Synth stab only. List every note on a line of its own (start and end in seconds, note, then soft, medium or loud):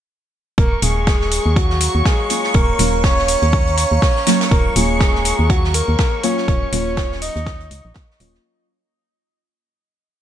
0.83 2.28 F#3 medium
0.83 2.28 A#3 medium
0.83 2.28 C#4 medium
0.83 2.28 F5 medium
2.30 2.77 F#3 medium
2.30 2.77 A#3 medium
2.30 2.77 C#4 medium
2.30 2.77 F4 medium
2.79 4.24 F#3 medium
2.79 4.24 A#3 medium
2.79 4.24 C#4 medium
2.79 4.24 F4 medium
4.27 4.73 F#3 medium
4.27 4.73 A#3 medium
4.27 4.73 C#4 medium
4.27 4.73 F4 medium
4.76 6.21 F#3 medium
4.76 6.21 A#3 medium
4.76 6.21 C#4 medium
4.76 6.21 F4 loud
6.24 6.70 F#3 medium
6.24 6.70 A#3 medium
6.24 6.70 C#4 medium
6.24 6.70 F4 medium
6.73 8.18 F#3 medium
6.73 8.18 A#3 medium
6.73 8.18 C#4 medium
6.73 8.18 F4 loud
8.20 8.44 F#3 medium
8.20 8.44 A#3 medium
8.20 8.44 C#4 medium
8.20 8.44 F4 medium